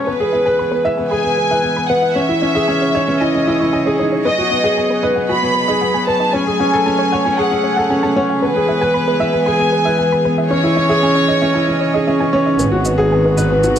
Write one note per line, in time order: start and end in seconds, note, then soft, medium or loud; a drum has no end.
0.06 4.21 E3 medium
0.06 2.14 G#3 medium
0.06 0.14 B3 medium
0.06 2.14 B3 medium
0.06 2.14 G#4 medium
0.06 0.81 B4 medium
0.06 0.17 B4 medium
0.20 0.28 G#4 medium
0.33 0.46 B3 medium
0.33 0.40 E5 medium
0.46 0.59 B4 medium
0.46 0.50 G#5 medium
0.59 0.72 B3 medium
0.59 0.66 B5 medium
0.72 0.79 B4 medium
0.85 0.89 E5 medium
0.85 0.98 E5 medium
0.97 1.11 B3 medium
0.97 1.08 G#5 medium
1.11 1.24 G#4 medium
1.11 1.86 G#5 medium
1.11 1.21 B5 medium
1.24 1.32 B3 medium
1.38 1.45 B4 medium
1.51 1.58 B4 medium
1.51 1.55 E5 medium
1.63 1.75 B3 medium
1.63 1.71 G#5 medium
1.76 1.88 B3 medium
1.76 1.83 B5 medium
1.89 1.97 B3 medium
1.89 1.97 B4 medium
1.89 2.15 F#5 medium
2.02 2.13 E5 medium
2.14 4.22 C#4 medium
2.14 2.23 C#4 medium
2.14 12.55 G#4 medium
2.14 6.29 C#5 medium
2.14 2.26 C#5 medium
2.14 3.19 E5 medium
2.29 2.36 E4 medium
2.42 2.55 C#4 medium
2.42 2.49 D#5 medium
2.55 2.68 G#4 medium
2.55 2.59 E5 medium
2.68 2.81 C#4 medium
2.68 2.75 G#5 medium
2.82 2.88 C#5 medium
2.95 3.07 C#5 medium
2.95 2.99 D#5 medium
3.08 3.20 C#4 medium
3.08 3.18 E5 medium
3.19 3.33 E4 medium
3.19 3.98 D#5 medium
3.19 3.31 G#5 medium
3.35 3.42 C#4 medium
3.47 3.59 E4 medium
3.47 3.57 C#6 medium
3.60 3.73 E4 medium
3.60 3.67 C#6 medium
3.73 3.85 D#5 medium
3.73 3.80 G#5 medium
3.86 3.98 G#4 medium
3.86 3.93 C#5 medium
3.99 4.11 D#4 medium
3.99 4.06 C#5 medium
4.12 4.16 C#5 medium
4.25 8.38 F#3 medium
4.25 6.31 B3 medium
4.25 4.33 B3 medium
4.25 4.35 B4 medium
4.25 4.99 D#5 loud
4.38 4.45 F#4 medium
4.51 4.63 B3 medium
4.51 4.58 D#5 medium
4.64 4.76 G#4 medium
4.64 4.68 F#5 medium
4.77 4.89 B3 medium
4.77 4.84 G#5 medium
4.90 4.97 B4 medium
5.03 5.15 B4 medium
5.03 5.07 D#5 medium
5.16 5.28 B3 medium
5.16 5.26 F#5 medium
5.29 5.42 F#4 medium
5.29 5.39 G#5 medium
5.29 6.04 B5 medium
5.42 5.50 B3 medium
5.55 5.62 B4 medium
5.68 5.76 G#4 medium
5.68 5.72 D#5 medium
5.81 5.93 B3 medium
5.81 5.88 F#5 medium
5.94 6.06 B3 medium
5.94 6.01 G#5 medium
6.07 6.15 B3 medium
6.07 6.14 B4 medium
6.07 6.34 A5 medium
6.20 6.30 D#5 medium
6.33 8.40 A3 medium
6.33 8.40 C#4 medium
6.33 6.41 C#4 medium
6.33 6.43 C#5 medium
6.33 7.38 G#5 medium
6.47 6.54 G#4 medium
6.60 6.72 C#4 medium
6.60 6.66 F#5 medium
6.73 6.85 A4 medium
6.73 6.77 G#5 medium
6.86 6.98 C#4 medium
6.86 6.93 A5 medium
6.99 7.05 C#5 medium
7.12 7.25 C#5 medium
7.12 7.16 F#5 medium
7.25 7.38 C#4 medium
7.25 7.35 G#5 medium
7.38 7.51 G#4 medium
7.38 8.16 F#5 medium
7.38 7.48 A5 medium
7.51 7.59 C#4 medium
7.64 7.71 C#5 medium
7.77 7.85 A4 medium
7.77 7.81 F#5 medium
7.90 8.02 C#4 medium
7.90 7.97 G#5 medium
8.03 8.15 C#4 medium
8.03 8.10 A5 loud
8.16 8.24 C#4 medium
8.16 8.23 C#5 medium
8.30 8.40 F#5 medium
8.41 12.55 E3 medium
8.41 10.48 G#3 medium
8.41 10.48 B3 medium
8.41 8.50 B3 medium
8.41 9.43 B4 medium
8.41 8.52 B4 medium
8.56 8.63 G#4 medium
8.68 8.81 B3 medium
8.68 8.75 E5 medium
8.81 8.94 B4 medium
8.81 8.85 G#5 medium
8.94 9.07 B3 medium
8.94 9.01 B5 medium
9.08 9.14 B4 medium
9.20 9.24 E5 medium
9.20 9.33 E5 medium
9.33 9.46 B3 medium
9.33 9.44 G#5 medium
9.46 9.59 G#4 medium
9.46 10.25 G#5 loud
9.46 9.57 B5 medium
9.60 9.67 B3 medium
9.72 9.79 B4 medium
9.85 9.93 B4 medium
9.85 9.90 E5 loud
9.98 10.10 B3 medium
9.98 10.05 G#5 medium
10.12 10.23 B3 medium
10.12 10.19 B5 medium
10.25 10.32 B3 medium
10.25 10.32 B4 medium
10.38 10.48 E5 medium
10.49 12.57 C#4 medium
10.49 10.58 C#4 medium
10.49 12.03 C#5 loud
10.49 10.61 C#5 medium
10.49 12.57 D#5 medium
10.64 10.71 E4 medium
10.77 10.89 C#4 medium
10.77 10.84 D#5 medium
10.89 11.02 G#4 medium
10.89 10.94 E5 loud
11.03 11.15 C#4 medium
11.03 11.10 G#5 medium
11.15 11.23 C#5 medium
11.28 11.41 C#5 medium
11.28 11.33 D#5 loud
11.41 11.54 C#4 medium
11.41 11.52 E5 medium
11.54 11.67 E4 medium
11.54 11.65 G#5 medium
11.69 11.76 C#4 medium
11.81 11.88 C#5 medium
11.94 12.02 G#4 medium
11.94 11.98 D#5 medium
12.07 12.18 C#4 medium
12.07 12.14 E5 medium
12.20 12.31 C#4 medium
12.20 12.27 G#5 medium
12.33 12.41 C#4 medium
12.33 12.40 C#5 medium
12.46 12.57 D#5 medium
12.59 13.79 G#1 medium
12.59 13.79 D#3 medium
12.59 12.67 B3 medium
12.59 13.79 B3 medium
12.59 13.79 F#4 medium
12.59 12.70 B4 medium
12.59 shaker soft
12.72 12.80 F#4 medium
12.85 12.98 B3 medium
12.85 12.92 D#5 medium
12.85 shaker medium
12.98 13.11 G#4 medium
12.98 13.03 F#5 medium
13.11 13.24 B3 medium
13.11 13.19 G#5 medium
13.25 13.32 B4 medium
13.37 13.50 B4 medium
13.37 13.42 D#5 medium
13.37 shaker medium
13.50 13.63 B3 medium
13.50 13.61 F#5 medium
13.63 13.76 F#4 medium
13.63 13.74 G#5 medium
13.63 shaker soft